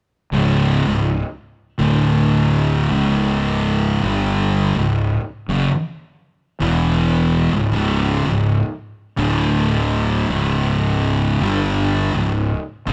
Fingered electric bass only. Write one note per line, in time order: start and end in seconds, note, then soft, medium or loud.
0.32 0.82 C#1 medium
0.87 1.22 C#1 medium
1.80 2.87 D1 medium
2.92 3.99 C#1 medium
4.04 4.72 G1 medium
4.76 5.19 C#1 medium
5.49 5.67 F#1 medium
6.61 7.49 E1 medium
7.53 7.71 C#1 medium
7.72 8.22 C#1 medium
8.26 8.62 C#1 medium
9.18 10.26 D1 medium
10.30 11.37 C#1 medium
11.41 12.10 G1 medium
12.14 12.57 C#1 medium
12.88 12.93 F#1 medium